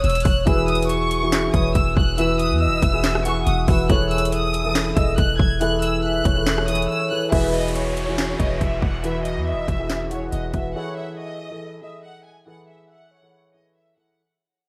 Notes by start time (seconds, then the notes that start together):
Already playing: C#5
0.04 E1 E6, closed hi-hat
0.10 closed hi-hat
0.15 closed hi-hat
0.20 closed hi-hat
0.25 E1 F#6, kick, open hi-hat
0.45 E1 E3 E4 F#4 G#4 B4 E6, kick, closed hi-hat
0.68 D#6, closed hi-hat
0.75 closed hi-hat
0.82 closed hi-hat
0.89 C#6, closed hi-hat
1.11 closed hi-hat
1.22 E3 E4 F#4 G#4
1.32 snare, clap, closed hi-hat
1.52 E1 E3 E4 F#4 B4 C#5 D#6, kick, closed hi-hat
1.75 E1 E6, kick, closed hi-hat
1.97 E1 F#6, kick
2.18 E3 E4 F#4 B4 E6, closed hi-hat
2.39 D#6, closed hi-hat
2.51 E2
2.61 D#5 E6
2.67 E1
2.82 E1 E5, kick, closed hi-hat
2.92 E3 E4 F#4 G#4
3.04 snare, clap, closed hi-hat
3.15 cross-stick
3.25 E3 E4 F#4 G#4 F#5 C#6, closed hi-hat
3.47 E1 D#6, closed hi-hat
3.67 E1 E3 E4 F#4 B4 E6, kick, open hi-hat
3.89 E1 E3 E4 G#4 A4 C#5 F#6, kick, closed hi-hat
4.11 E6, closed hi-hat
4.18 closed hi-hat
4.25 closed hi-hat
4.32 D#6, closed hi-hat
4.54 closed hi-hat
4.64 E3 E4 G#4 A4
4.75 snare, clap, closed hi-hat
4.95 E1 E3 E4 G#4 A4 D#5 E6, kick, closed hi-hat
5.18 E1 F#6, kick, closed hi-hat
5.39 E1 G#6, kick
5.60 E3 E4 G#4 A4 F#6, closed hi-hat
5.82 E6, closed hi-hat
6.04 E5 F#6
6.25 E1 C#5, kick, closed hi-hat
6.36 E3 E4 G#4 A4
6.47 snare, clap, closed hi-hat
6.58 cross-stick
6.68 E3 E4 G#4 A4 D#6, closed hi-hat
6.75 closed hi-hat
6.82 closed hi-hat
6.90 E6
7.11 E3 E4 G#4 A4 F#6
7.31 E1 E3 E4 F#4 G#4 B4 E5, kick, closed hi-hat, downlifter
7.54 D#5, closed hi-hat
7.61 closed hi-hat
7.68 closed hi-hat
7.75 C#5, closed hi-hat
7.97 closed hi-hat
8.08 E3 E4 F#4 G#4
8.18 snare, clap, closed hi-hat
8.38 E1 E3 E4 F#4 B4 C#5 D#5, kick, closed hi-hat
8.61 E1 E5, kick, closed hi-hat
8.82 E1 F#5, kick
9.03 E3 E4 F#4 B4 E5, closed hi-hat
9.25 D#5, closed hi-hat
9.37 E2
9.47 D#5 E5
9.52 E1
9.68 E1 E5, kick, closed hi-hat
9.78 E3 E4 F#4 G#4
9.90 snare, clap, closed hi-hat
10.11 E3 E4 F#4 G#4 C#5 F#5, closed hi-hat
10.32 E1 D#5, closed hi-hat
10.53 E1 E3 E4 F#4 B4 E5, kick, closed hi-hat
10.75 E3 E4 G#4 A4 C#5 F#5
10.97 E5
11.18 D#5
11.50 E3 E4 G#4 A4
11.81 E3 E4 G#4 A4 D#5 E5
12.04 F#5
12.25 G#5
12.46 E3 E4 G#4 A4 F#5
12.68 E5
12.90 E5 F#5
13.11 C#5
13.22 E3 E4 G#4 A4
13.53 E3 E4 G#4 A4 D#5
13.75 E5
13.96 E3 E4 G#4 A4 F#5